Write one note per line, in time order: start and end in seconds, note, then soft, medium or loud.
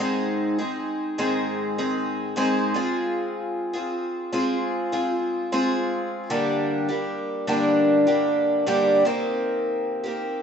0.00 0.59 G#2 medium
0.00 0.59 D#3 medium
0.00 0.59 G#3 medium
0.00 0.59 C4 medium
0.00 0.58 D#4 medium
0.00 0.57 G#4 medium
0.58 1.18 G#3 medium
0.58 1.18 C4 medium
0.58 1.18 D#4 medium
0.58 1.18 G#4 medium
1.18 1.78 G#2 medium
1.18 1.78 D#3 medium
1.18 1.78 G#3 loud
1.18 1.78 C4 medium
1.18 1.77 D#4 medium
1.18 1.77 G#4 medium
1.78 2.35 G#2 medium
1.78 2.36 D#3 medium
1.78 2.36 G#3 medium
1.78 2.36 C4 medium
1.78 2.36 D#4 medium
1.78 2.37 G#4 medium
2.36 2.76 G#2 medium
2.36 2.76 D#3 medium
2.36 2.73 G#3 loud
2.36 2.75 C4 medium
2.36 2.75 D#4 loud
2.36 2.75 G#4 loud
2.74 3.74 G#3 medium
2.74 3.75 C4 medium
2.74 3.73 F4 medium
2.74 3.72 G#4 medium
3.73 4.31 C4 medium
3.73 4.32 F4 medium
3.73 4.33 G#4 medium
4.32 4.92 G#3 medium
4.32 4.92 C4 medium
4.32 4.92 F4 medium
4.32 4.91 G#4 loud
4.92 5.51 G#3 medium
4.92 5.51 C4 medium
4.92 5.52 F4 medium
4.92 5.52 G#4 medium
5.52 6.30 G#3 medium
5.52 6.31 C4 loud
5.52 6.30 F4 loud
5.52 6.31 G#4 loud
6.30 6.90 G2 medium
6.30 6.90 D3 medium
6.30 6.89 G3 medium
6.30 6.89 A#3 medium
6.30 6.88 D4 medium
6.30 6.87 G4 medium
6.89 7.46 G3 soft
6.89 7.47 A#3 medium
6.89 7.48 D4 medium
6.89 7.48 G4 medium
7.47 8.07 G2 medium
7.47 8.07 D3 medium
7.47 8.07 G3 medium
7.47 8.07 A#3 medium
7.47 8.06 D4 medium
7.47 8.06 G4 medium
8.07 8.65 G2 medium
8.07 8.66 D3 medium
8.07 8.66 G3 medium
8.07 8.67 A#3 medium
8.07 8.67 D4 medium
8.07 8.67 G4 medium
8.66 9.06 G2 medium
8.66 9.05 D3 loud
8.66 9.05 G3 loud
8.66 9.05 A#3 medium
8.66 9.06 D4 medium
8.66 9.06 G4 loud
9.05 10.04 C3 medium
9.05 10.43 D#3 medium
9.05 10.05 A#3 medium
9.05 10.05 C4 medium
9.05 10.02 G4 loud
10.04 10.43 A#3 medium
10.04 10.43 C4 medium
10.04 10.43 G4 medium